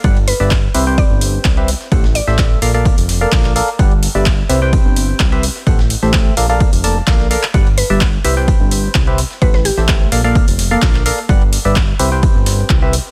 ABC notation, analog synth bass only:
X:1
M:4/4
L:1/16
Q:"Swing 16ths" 1/4=128
K:Clyd
V:1 name="Analog synth bass" clef=bass
G,,,2 z G,,,2 z C,,2 z G,,,2 z C,,2 z2 | A,,,2 z A,,,2 z _B,,,2 z =F,,,2 z B,,,2 z2 | G,,,2 z G,,,2 z C,,2 z G,,,2 z C,,2 z2 | A,,,2 z A,,,2 z _B,,,2 z =F,,,2 z B,,,2 z2 |
G,,,2 z G,,,2 z C,,2 z G,,,2 z C,,2 z2 | A,,,2 z A,,,2 z _B,,,2 z =F,,,2 z B,,,2 z2 | G,,,2 z G,,,2 z C,,2 z G,,,2 z C,,2 z2 |]